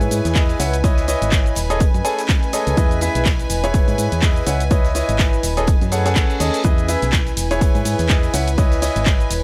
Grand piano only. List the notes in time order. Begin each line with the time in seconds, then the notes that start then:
Already playing: E4 G#4 B4 C#5
0.35 E4 G#4 B4 D#5
0.60 E4 B4 C#5 F#5
0.84 E4 B4 C#5 D#5
1.08 E4 B4 C#5 D#5
1.70 G#4 A4 C#5 D#5
2.05 G#4 A4 C#5 G#5
2.53 G#4 A4 C#5 D#5
2.77 E4 G#4 B4 D#5
3.02 E4 G#4 B4 E5
3.64 E4 G#4 B4 C#5
4.22 E4 G#4 B4 D#5
4.47 E4 B4 C#5 F#5
4.71 E4 B4 C#5 D#5
4.95 E4 B4 C#5 D#5
5.57 G#4 A4 C#5 D#5
5.92 G#4 A4 C#5 F#5
6.06 G#4 A4 C#5 F#5
6.40 G#4 A4 C#5 D#5
6.64 E4 G#4 B4 D#5
6.89 E4 G#4 B4 E5
7.51 E4 G#4 B4 C#5
8.10 E4 G#4 B4 D#5
8.34 E4 B4 C#5 F#5
8.58 E4 B4 C#5 D#5
8.82 E4 B4 C#5 D#5